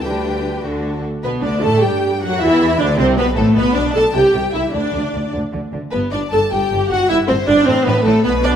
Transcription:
0.04 0.63 D2 medium
0.04 0.63 D3 medium
0.04 0.64 G3 medium
0.04 0.63 D4 medium
0.04 0.64 G4 medium
0.04 0.63 B4 medium
0.04 0.64 G5 medium
0.64 1.04 D2 medium
0.64 1.03 D3 medium
0.64 1.04 A3 medium
0.64 1.03 D4 medium
0.64 1.04 F#4 medium
0.64 1.04 A4 medium
1.23 1.42 B1 medium
1.23 1.42 B2 medium
1.23 1.42 B3 medium
1.23 1.32 B4 medium
1.43 1.63 D2 medium
1.43 1.63 D3 medium
1.43 1.63 D4 medium
1.43 1.63 D5 medium
1.63 1.83 A2 medium
1.63 1.83 A3 medium
1.63 1.83 A4 loud
1.63 1.83 A5 medium
1.63 1.82 A5 medium
1.83 2.22 G2 medium
1.83 2.22 G3 medium
1.83 2.22 G4 medium
1.83 2.21 G5 medium
1.83 2.22 G5 medium
2.21 2.41 F#2 medium
2.21 2.41 F#3 loud
2.21 2.41 F#4 loud
2.21 2.41 F#5 medium
2.41 2.79 E2 loud
2.41 2.79 E3 loud
2.41 2.79 E4 loud
2.41 2.79 E5 medium
2.41 2.79 E5 loud
2.79 2.98 D2 loud
2.79 2.98 D3 loud
2.79 2.87 D4 loud
2.79 2.98 D5 loud
2.79 2.99 D5 medium
2.98 3.18 C2 loud
2.98 3.18 C3 loud
2.98 3.17 C4 loud
2.98 3.06 C5 loud
2.98 3.06 C5 medium
3.17 3.37 B1 loud
3.17 3.37 B2 loud
3.17 3.25 B3 loud
3.17 3.26 B4 loud
3.17 3.37 B4 loud
3.36 3.44 A1 medium
3.36 3.44 A2 medium
3.36 3.56 A3 loud
3.36 3.44 A4 medium
3.36 3.56 A4 medium
3.55 3.64 B1 medium
3.55 3.64 B2 medium
3.55 3.75 B3 loud
3.55 3.75 B4 loud
3.55 3.75 B4 medium
3.75 3.83 B1 medium
3.75 3.83 B2 medium
3.75 3.95 D4 loud
3.75 3.95 D5 loud
3.75 3.83 D5 loud
3.94 4.03 B1 medium
3.94 4.02 B2 medium
3.94 4.03 A4 loud
3.94 4.14 A5 medium
3.94 4.14 A5 loud
4.13 4.22 C2 medium
4.13 4.21 C3 medium
4.13 4.53 G4 loud
4.13 4.53 G5 medium
4.13 4.52 G5 medium
4.33 4.42 C2 medium
4.33 4.41 C3 medium
4.52 4.62 C2 medium
4.52 4.61 C3 medium
4.52 4.61 E4 loud
4.52 4.73 E5 medium
4.73 4.82 D2 medium
4.73 4.81 D3 medium
4.73 5.32 D4 loud
4.73 5.32 D5 medium
4.73 5.33 D5 medium
4.92 5.02 D2 medium
4.92 5.00 D3 medium
5.13 5.21 D2 medium
5.13 5.21 D3 medium
5.32 5.42 D2 medium
5.32 5.40 D3 medium
5.52 5.61 D2 medium
5.52 5.60 D3 medium
5.72 5.81 D2 medium
5.72 5.80 D3 medium
5.91 6.01 G1 medium
5.91 6.00 G2 medium
5.91 6.11 B3 medium
5.91 5.99 B4 medium
5.91 6.00 B4 medium
6.11 6.20 G1 medium
6.11 6.20 G2 medium
6.11 6.20 D4 medium
6.11 6.19 D5 medium
6.11 6.32 D5 medium
6.31 6.40 G1 medium
6.31 6.40 G2 medium
6.31 6.40 A4 loud
6.31 6.51 A5 medium
6.31 6.40 A5 medium
6.50 6.59 G1 medium
6.50 6.60 G2 medium
6.50 6.89 G4 loud
6.50 6.90 G5 medium
6.50 6.89 G5 medium
6.71 6.79 G1 medium
6.71 6.79 G2 medium
6.89 6.98 G1 medium
6.89 6.98 G2 medium
6.89 7.09 F#4 loud
6.89 7.09 F#5 loud
6.89 7.09 F#5 medium
7.09 7.17 G1 loud
7.09 7.17 G2 medium
7.09 7.17 E4 loud
7.09 7.17 E5 loud
7.09 7.29 E5 loud
7.28 7.36 G1 medium
7.28 7.37 G2 medium
7.28 7.35 C4 loud
7.28 7.47 C5 loud
7.28 7.36 C5 loud
7.48 7.55 G1 medium
7.48 7.56 G2 medium
7.48 7.67 D4 loud
7.48 7.67 D5 medium
7.48 7.67 D5 loud
7.66 7.75 A1 loud
7.66 7.75 A2 loud
7.66 7.86 C4 loud
7.66 7.86 C5 loud
7.86 7.93 A1 loud
7.86 7.94 A2 loud
7.86 8.06 B3 loud
7.86 8.05 B4 loud
7.86 7.94 B4 loud
8.05 8.13 A1 medium
8.05 8.13 A2 medium
8.05 8.24 A3 loud
8.05 8.24 A4 loud
8.23 8.56 B1 medium
8.23 8.56 B2 medium
8.23 8.32 B3 loud
8.23 8.31 B4 loud
8.23 8.44 B4 loud
8.43 8.56 D4 loud
8.43 8.51 D5 loud
8.43 8.56 D5 loud

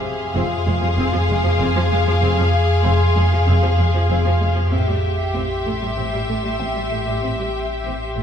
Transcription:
0.00 4.72 F2 medium
0.00 4.68 G#4 medium
0.00 4.72 G#4 medium
0.00 4.68 F5 medium
0.00 4.72 F5 soft
0.00 4.37 C6 soft
0.00 4.68 C6 soft
0.00 3.12 D#6 medium
0.35 0.41 F1 medium
0.35 0.41 F2 medium
0.35 0.41 C4 medium
0.35 2.19 F4 soft
0.35 2.19 F5 soft
0.35 4.37 D6 soft
0.66 0.73 F1 soft
0.66 0.72 F2 soft
0.66 0.72 G#3 soft
0.82 0.88 F2 soft
0.82 0.88 F3 soft
0.97 1.04 F1 medium
0.97 1.04 F2 medium
0.97 1.04 C4 medium
1.13 1.19 F2 soft
1.13 1.19 F3 soft
1.28 1.35 F1 soft
1.28 1.35 F2 soft
1.28 1.35 G#3 soft
1.44 1.51 F2 soft
1.44 1.50 F3 soft
1.59 1.66 F1 medium
1.59 1.67 F2 medium
1.59 1.66 C4 medium
1.75 1.82 F2 soft
1.75 1.82 F3 medium
1.91 1.97 F1 soft
1.91 1.98 F2 soft
1.91 1.97 G#3 soft
2.06 2.13 F2 soft
2.06 2.13 F3 soft
2.22 2.29 F1 medium
2.22 2.29 F2 medium
2.22 2.28 C4 medium
2.37 2.45 F2 soft
2.37 2.44 F3 soft
2.84 2.92 F1 medium
2.84 2.91 F2 medium
2.84 2.91 C4 soft
2.84 4.69 C6 medium
3.16 3.22 F1 soft
3.16 3.22 F2 soft
3.16 3.22 G#3 soft
3.32 3.38 F2 soft
3.32 3.38 F3 soft
3.47 3.53 F1 medium
3.47 3.54 F2 medium
3.47 3.53 C4 medium
3.63 3.70 F2 soft
3.63 3.69 F3 soft
3.78 3.85 F1 soft
3.78 3.85 F2 soft
3.78 3.85 G#3 soft
3.94 4.00 F2 soft
3.94 4.01 F3 soft
4.10 4.16 F1 medium
4.10 4.16 F2 medium
4.10 4.17 C4 medium
4.26 4.32 F2 soft
4.26 4.32 F3 soft
4.41 4.47 F1 soft
4.41 4.47 F2 soft
4.41 4.47 G#3 soft
4.56 4.63 F2 soft
4.56 4.62 F3 soft
4.71 8.23 A1 medium
4.71 4.79 A1 medium
4.71 4.79 A2 medium
4.71 4.78 C4 soft
4.71 8.23 G4 soft
4.71 8.23 E5 medium
4.71 8.23 C6 medium
4.88 4.94 A2 soft
4.88 4.94 G3 soft
5.34 5.41 A1 soft
5.34 5.41 A2 soft
5.34 5.41 C4 soft
5.65 5.72 A1 soft
5.65 5.73 A2 soft
5.65 5.72 A3 soft
5.81 5.88 A2 soft
5.81 5.88 G3 soft
5.96 6.04 A1 soft
5.96 6.04 A2 soft
5.96 6.03 C4 soft
6.13 6.19 A2 soft
6.13 6.19 G3 soft
6.28 6.35 A1 soft
6.28 6.35 A2 soft
6.28 6.34 A3 soft
6.44 6.51 A2 soft
6.44 6.50 G3 soft
6.59 6.66 A1 soft
6.59 6.66 A2 soft
6.59 6.66 C4 soft
6.59 8.23 G5 soft
6.75 6.82 A2 soft
6.75 6.82 G3 soft
6.91 6.98 A1 soft
6.91 6.98 A2 soft
6.91 6.97 A3 soft
7.06 7.13 A2 soft
7.06 7.13 G3 soft
7.22 7.29 A1 soft
7.22 7.29 A2 soft
7.22 7.29 C4 soft
7.38 7.45 A2 soft
7.38 7.44 G3 soft
7.84 7.91 A1 soft
7.84 7.91 A2 soft
7.84 7.91 C4 soft
8.16 8.22 A1 soft
8.16 8.23 A2 soft
8.16 8.23 A3 soft

